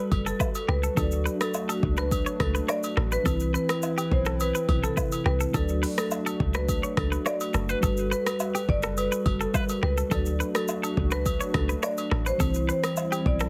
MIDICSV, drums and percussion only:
0, 0, Header, 1, 2, 480
1, 0, Start_track
1, 0, Key_signature, 2, "major"
1, 0, Tempo, 571429
1, 816, Time_signature, 4, 2, 24, 8
1, 11333, End_track
2, 0, Start_track
2, 0, Title_t, "Drums"
2, 97, Note_on_c, 9, 36, 100
2, 97, Note_on_c, 9, 67, 78
2, 181, Note_off_c, 9, 36, 0
2, 181, Note_off_c, 9, 67, 0
2, 224, Note_on_c, 9, 82, 45
2, 308, Note_off_c, 9, 82, 0
2, 335, Note_on_c, 9, 36, 84
2, 338, Note_on_c, 9, 82, 70
2, 342, Note_on_c, 9, 77, 78
2, 419, Note_off_c, 9, 36, 0
2, 422, Note_off_c, 9, 82, 0
2, 426, Note_off_c, 9, 77, 0
2, 460, Note_on_c, 9, 82, 62
2, 465, Note_on_c, 9, 67, 74
2, 544, Note_off_c, 9, 82, 0
2, 549, Note_off_c, 9, 67, 0
2, 577, Note_on_c, 9, 37, 89
2, 661, Note_off_c, 9, 37, 0
2, 701, Note_on_c, 9, 82, 55
2, 785, Note_off_c, 9, 82, 0
2, 817, Note_on_c, 9, 36, 127
2, 817, Note_on_c, 9, 82, 83
2, 818, Note_on_c, 9, 67, 75
2, 901, Note_off_c, 9, 36, 0
2, 901, Note_off_c, 9, 82, 0
2, 902, Note_off_c, 9, 67, 0
2, 935, Note_on_c, 9, 82, 52
2, 1019, Note_off_c, 9, 82, 0
2, 1061, Note_on_c, 9, 82, 51
2, 1145, Note_off_c, 9, 82, 0
2, 1183, Note_on_c, 9, 37, 110
2, 1184, Note_on_c, 9, 82, 56
2, 1189, Note_on_c, 9, 67, 84
2, 1267, Note_off_c, 9, 37, 0
2, 1268, Note_off_c, 9, 82, 0
2, 1273, Note_off_c, 9, 67, 0
2, 1293, Note_on_c, 9, 82, 74
2, 1298, Note_on_c, 9, 77, 80
2, 1377, Note_off_c, 9, 82, 0
2, 1382, Note_off_c, 9, 77, 0
2, 1424, Note_on_c, 9, 67, 83
2, 1424, Note_on_c, 9, 82, 57
2, 1508, Note_off_c, 9, 67, 0
2, 1508, Note_off_c, 9, 82, 0
2, 1537, Note_on_c, 9, 36, 96
2, 1621, Note_off_c, 9, 36, 0
2, 1655, Note_on_c, 9, 82, 43
2, 1663, Note_on_c, 9, 37, 84
2, 1739, Note_off_c, 9, 82, 0
2, 1747, Note_off_c, 9, 37, 0
2, 1776, Note_on_c, 9, 36, 103
2, 1778, Note_on_c, 9, 82, 79
2, 1782, Note_on_c, 9, 67, 78
2, 1860, Note_off_c, 9, 36, 0
2, 1862, Note_off_c, 9, 82, 0
2, 1866, Note_off_c, 9, 67, 0
2, 1903, Note_on_c, 9, 82, 56
2, 1987, Note_off_c, 9, 82, 0
2, 2016, Note_on_c, 9, 37, 108
2, 2017, Note_on_c, 9, 36, 98
2, 2018, Note_on_c, 9, 67, 76
2, 2100, Note_off_c, 9, 37, 0
2, 2101, Note_off_c, 9, 36, 0
2, 2102, Note_off_c, 9, 67, 0
2, 2143, Note_on_c, 9, 82, 49
2, 2227, Note_off_c, 9, 82, 0
2, 2258, Note_on_c, 9, 82, 69
2, 2259, Note_on_c, 9, 37, 89
2, 2262, Note_on_c, 9, 77, 79
2, 2342, Note_off_c, 9, 82, 0
2, 2343, Note_off_c, 9, 37, 0
2, 2346, Note_off_c, 9, 77, 0
2, 2380, Note_on_c, 9, 82, 60
2, 2386, Note_on_c, 9, 67, 70
2, 2464, Note_off_c, 9, 82, 0
2, 2470, Note_off_c, 9, 67, 0
2, 2497, Note_on_c, 9, 37, 89
2, 2581, Note_off_c, 9, 37, 0
2, 2620, Note_on_c, 9, 82, 53
2, 2704, Note_off_c, 9, 82, 0
2, 2736, Note_on_c, 9, 36, 118
2, 2736, Note_on_c, 9, 82, 87
2, 2738, Note_on_c, 9, 67, 76
2, 2820, Note_off_c, 9, 36, 0
2, 2820, Note_off_c, 9, 82, 0
2, 2822, Note_off_c, 9, 67, 0
2, 2855, Note_on_c, 9, 82, 54
2, 2939, Note_off_c, 9, 82, 0
2, 2981, Note_on_c, 9, 82, 49
2, 3065, Note_off_c, 9, 82, 0
2, 3101, Note_on_c, 9, 37, 113
2, 3103, Note_on_c, 9, 82, 55
2, 3109, Note_on_c, 9, 67, 83
2, 3185, Note_off_c, 9, 37, 0
2, 3187, Note_off_c, 9, 82, 0
2, 3193, Note_off_c, 9, 67, 0
2, 3212, Note_on_c, 9, 82, 75
2, 3218, Note_on_c, 9, 77, 80
2, 3296, Note_off_c, 9, 82, 0
2, 3302, Note_off_c, 9, 77, 0
2, 3343, Note_on_c, 9, 82, 54
2, 3345, Note_on_c, 9, 67, 81
2, 3427, Note_off_c, 9, 82, 0
2, 3429, Note_off_c, 9, 67, 0
2, 3457, Note_on_c, 9, 36, 88
2, 3541, Note_off_c, 9, 36, 0
2, 3574, Note_on_c, 9, 82, 44
2, 3582, Note_on_c, 9, 37, 86
2, 3658, Note_off_c, 9, 82, 0
2, 3666, Note_off_c, 9, 37, 0
2, 3697, Note_on_c, 9, 82, 78
2, 3701, Note_on_c, 9, 67, 80
2, 3781, Note_off_c, 9, 82, 0
2, 3785, Note_off_c, 9, 67, 0
2, 3823, Note_on_c, 9, 82, 57
2, 3907, Note_off_c, 9, 82, 0
2, 3936, Note_on_c, 9, 67, 82
2, 3937, Note_on_c, 9, 36, 95
2, 4020, Note_off_c, 9, 67, 0
2, 4021, Note_off_c, 9, 36, 0
2, 4063, Note_on_c, 9, 82, 46
2, 4147, Note_off_c, 9, 82, 0
2, 4175, Note_on_c, 9, 36, 88
2, 4177, Note_on_c, 9, 82, 72
2, 4180, Note_on_c, 9, 77, 79
2, 4259, Note_off_c, 9, 36, 0
2, 4261, Note_off_c, 9, 82, 0
2, 4264, Note_off_c, 9, 77, 0
2, 4300, Note_on_c, 9, 82, 60
2, 4304, Note_on_c, 9, 67, 70
2, 4384, Note_off_c, 9, 82, 0
2, 4388, Note_off_c, 9, 67, 0
2, 4416, Note_on_c, 9, 37, 86
2, 4500, Note_off_c, 9, 37, 0
2, 4539, Note_on_c, 9, 82, 53
2, 4623, Note_off_c, 9, 82, 0
2, 4656, Note_on_c, 9, 36, 123
2, 4656, Note_on_c, 9, 82, 82
2, 4658, Note_on_c, 9, 67, 80
2, 4740, Note_off_c, 9, 36, 0
2, 4740, Note_off_c, 9, 82, 0
2, 4742, Note_off_c, 9, 67, 0
2, 4775, Note_on_c, 9, 82, 51
2, 4859, Note_off_c, 9, 82, 0
2, 4901, Note_on_c, 9, 46, 50
2, 4901, Note_on_c, 9, 82, 49
2, 4985, Note_off_c, 9, 46, 0
2, 4985, Note_off_c, 9, 82, 0
2, 5023, Note_on_c, 9, 37, 108
2, 5024, Note_on_c, 9, 82, 54
2, 5028, Note_on_c, 9, 67, 79
2, 5107, Note_off_c, 9, 37, 0
2, 5108, Note_off_c, 9, 82, 0
2, 5112, Note_off_c, 9, 67, 0
2, 5132, Note_on_c, 9, 82, 72
2, 5137, Note_on_c, 9, 77, 79
2, 5216, Note_off_c, 9, 82, 0
2, 5221, Note_off_c, 9, 77, 0
2, 5263, Note_on_c, 9, 67, 81
2, 5264, Note_on_c, 9, 82, 53
2, 5347, Note_off_c, 9, 67, 0
2, 5348, Note_off_c, 9, 82, 0
2, 5377, Note_on_c, 9, 36, 91
2, 5461, Note_off_c, 9, 36, 0
2, 5493, Note_on_c, 9, 82, 45
2, 5501, Note_on_c, 9, 37, 88
2, 5577, Note_off_c, 9, 82, 0
2, 5585, Note_off_c, 9, 37, 0
2, 5616, Note_on_c, 9, 36, 96
2, 5617, Note_on_c, 9, 82, 74
2, 5620, Note_on_c, 9, 67, 78
2, 5700, Note_off_c, 9, 36, 0
2, 5701, Note_off_c, 9, 82, 0
2, 5704, Note_off_c, 9, 67, 0
2, 5743, Note_on_c, 9, 82, 57
2, 5827, Note_off_c, 9, 82, 0
2, 5857, Note_on_c, 9, 36, 99
2, 5857, Note_on_c, 9, 37, 107
2, 5857, Note_on_c, 9, 67, 78
2, 5941, Note_off_c, 9, 36, 0
2, 5941, Note_off_c, 9, 37, 0
2, 5941, Note_off_c, 9, 67, 0
2, 5984, Note_on_c, 9, 82, 46
2, 6068, Note_off_c, 9, 82, 0
2, 6098, Note_on_c, 9, 82, 70
2, 6100, Note_on_c, 9, 37, 89
2, 6100, Note_on_c, 9, 77, 79
2, 6182, Note_off_c, 9, 82, 0
2, 6184, Note_off_c, 9, 37, 0
2, 6184, Note_off_c, 9, 77, 0
2, 6220, Note_on_c, 9, 82, 59
2, 6223, Note_on_c, 9, 67, 74
2, 6304, Note_off_c, 9, 82, 0
2, 6307, Note_off_c, 9, 67, 0
2, 6332, Note_on_c, 9, 82, 56
2, 6337, Note_on_c, 9, 37, 88
2, 6416, Note_off_c, 9, 82, 0
2, 6421, Note_off_c, 9, 37, 0
2, 6460, Note_on_c, 9, 82, 54
2, 6544, Note_off_c, 9, 82, 0
2, 6576, Note_on_c, 9, 36, 118
2, 6576, Note_on_c, 9, 82, 82
2, 6577, Note_on_c, 9, 67, 76
2, 6660, Note_off_c, 9, 36, 0
2, 6660, Note_off_c, 9, 82, 0
2, 6661, Note_off_c, 9, 67, 0
2, 6696, Note_on_c, 9, 82, 50
2, 6780, Note_off_c, 9, 82, 0
2, 6821, Note_on_c, 9, 82, 52
2, 6905, Note_off_c, 9, 82, 0
2, 6943, Note_on_c, 9, 37, 107
2, 6944, Note_on_c, 9, 82, 56
2, 6947, Note_on_c, 9, 67, 82
2, 7027, Note_off_c, 9, 37, 0
2, 7028, Note_off_c, 9, 82, 0
2, 7031, Note_off_c, 9, 67, 0
2, 7053, Note_on_c, 9, 82, 74
2, 7056, Note_on_c, 9, 77, 77
2, 7137, Note_off_c, 9, 82, 0
2, 7140, Note_off_c, 9, 77, 0
2, 7182, Note_on_c, 9, 67, 81
2, 7184, Note_on_c, 9, 82, 54
2, 7266, Note_off_c, 9, 67, 0
2, 7268, Note_off_c, 9, 82, 0
2, 7297, Note_on_c, 9, 36, 90
2, 7381, Note_off_c, 9, 36, 0
2, 7413, Note_on_c, 9, 82, 43
2, 7422, Note_on_c, 9, 37, 88
2, 7497, Note_off_c, 9, 82, 0
2, 7506, Note_off_c, 9, 37, 0
2, 7537, Note_on_c, 9, 82, 73
2, 7540, Note_on_c, 9, 67, 78
2, 7621, Note_off_c, 9, 82, 0
2, 7624, Note_off_c, 9, 67, 0
2, 7662, Note_on_c, 9, 82, 58
2, 7746, Note_off_c, 9, 82, 0
2, 7775, Note_on_c, 9, 67, 81
2, 7777, Note_on_c, 9, 36, 95
2, 7859, Note_off_c, 9, 67, 0
2, 7861, Note_off_c, 9, 36, 0
2, 7903, Note_on_c, 9, 82, 47
2, 7987, Note_off_c, 9, 82, 0
2, 8015, Note_on_c, 9, 36, 91
2, 8017, Note_on_c, 9, 82, 67
2, 8021, Note_on_c, 9, 77, 81
2, 8099, Note_off_c, 9, 36, 0
2, 8101, Note_off_c, 9, 82, 0
2, 8105, Note_off_c, 9, 77, 0
2, 8139, Note_on_c, 9, 82, 59
2, 8144, Note_on_c, 9, 67, 74
2, 8223, Note_off_c, 9, 82, 0
2, 8228, Note_off_c, 9, 67, 0
2, 8256, Note_on_c, 9, 37, 85
2, 8340, Note_off_c, 9, 37, 0
2, 8379, Note_on_c, 9, 82, 54
2, 8463, Note_off_c, 9, 82, 0
2, 8495, Note_on_c, 9, 82, 86
2, 8496, Note_on_c, 9, 36, 123
2, 8497, Note_on_c, 9, 67, 80
2, 8579, Note_off_c, 9, 82, 0
2, 8580, Note_off_c, 9, 36, 0
2, 8581, Note_off_c, 9, 67, 0
2, 8615, Note_on_c, 9, 82, 51
2, 8699, Note_off_c, 9, 82, 0
2, 8740, Note_on_c, 9, 82, 51
2, 8824, Note_off_c, 9, 82, 0
2, 8861, Note_on_c, 9, 37, 111
2, 8863, Note_on_c, 9, 82, 54
2, 8869, Note_on_c, 9, 67, 83
2, 8945, Note_off_c, 9, 37, 0
2, 8947, Note_off_c, 9, 82, 0
2, 8953, Note_off_c, 9, 67, 0
2, 8972, Note_on_c, 9, 82, 76
2, 8977, Note_on_c, 9, 77, 81
2, 9056, Note_off_c, 9, 82, 0
2, 9061, Note_off_c, 9, 77, 0
2, 9104, Note_on_c, 9, 67, 82
2, 9104, Note_on_c, 9, 82, 55
2, 9188, Note_off_c, 9, 67, 0
2, 9188, Note_off_c, 9, 82, 0
2, 9217, Note_on_c, 9, 36, 92
2, 9301, Note_off_c, 9, 36, 0
2, 9333, Note_on_c, 9, 82, 46
2, 9341, Note_on_c, 9, 37, 88
2, 9417, Note_off_c, 9, 82, 0
2, 9425, Note_off_c, 9, 37, 0
2, 9456, Note_on_c, 9, 36, 98
2, 9457, Note_on_c, 9, 82, 78
2, 9460, Note_on_c, 9, 67, 83
2, 9540, Note_off_c, 9, 36, 0
2, 9541, Note_off_c, 9, 82, 0
2, 9544, Note_off_c, 9, 67, 0
2, 9581, Note_on_c, 9, 82, 56
2, 9665, Note_off_c, 9, 82, 0
2, 9695, Note_on_c, 9, 37, 107
2, 9697, Note_on_c, 9, 36, 98
2, 9697, Note_on_c, 9, 67, 78
2, 9779, Note_off_c, 9, 37, 0
2, 9781, Note_off_c, 9, 36, 0
2, 9781, Note_off_c, 9, 67, 0
2, 9823, Note_on_c, 9, 82, 48
2, 9907, Note_off_c, 9, 82, 0
2, 9937, Note_on_c, 9, 82, 69
2, 9938, Note_on_c, 9, 37, 93
2, 9941, Note_on_c, 9, 77, 78
2, 10021, Note_off_c, 9, 82, 0
2, 10022, Note_off_c, 9, 37, 0
2, 10025, Note_off_c, 9, 77, 0
2, 10059, Note_on_c, 9, 82, 61
2, 10064, Note_on_c, 9, 67, 72
2, 10143, Note_off_c, 9, 82, 0
2, 10148, Note_off_c, 9, 67, 0
2, 10176, Note_on_c, 9, 37, 86
2, 10260, Note_off_c, 9, 37, 0
2, 10301, Note_on_c, 9, 82, 54
2, 10385, Note_off_c, 9, 82, 0
2, 10416, Note_on_c, 9, 36, 125
2, 10416, Note_on_c, 9, 82, 83
2, 10417, Note_on_c, 9, 67, 77
2, 10500, Note_off_c, 9, 36, 0
2, 10500, Note_off_c, 9, 82, 0
2, 10501, Note_off_c, 9, 67, 0
2, 10535, Note_on_c, 9, 82, 51
2, 10619, Note_off_c, 9, 82, 0
2, 10661, Note_on_c, 9, 82, 49
2, 10745, Note_off_c, 9, 82, 0
2, 10782, Note_on_c, 9, 37, 112
2, 10783, Note_on_c, 9, 82, 55
2, 10788, Note_on_c, 9, 67, 84
2, 10866, Note_off_c, 9, 37, 0
2, 10867, Note_off_c, 9, 82, 0
2, 10872, Note_off_c, 9, 67, 0
2, 10891, Note_on_c, 9, 82, 73
2, 10897, Note_on_c, 9, 77, 78
2, 10975, Note_off_c, 9, 82, 0
2, 10981, Note_off_c, 9, 77, 0
2, 11024, Note_on_c, 9, 67, 89
2, 11024, Note_on_c, 9, 82, 57
2, 11108, Note_off_c, 9, 67, 0
2, 11108, Note_off_c, 9, 82, 0
2, 11137, Note_on_c, 9, 36, 93
2, 11221, Note_off_c, 9, 36, 0
2, 11254, Note_on_c, 9, 82, 46
2, 11262, Note_on_c, 9, 37, 85
2, 11333, Note_off_c, 9, 37, 0
2, 11333, Note_off_c, 9, 82, 0
2, 11333, End_track
0, 0, End_of_file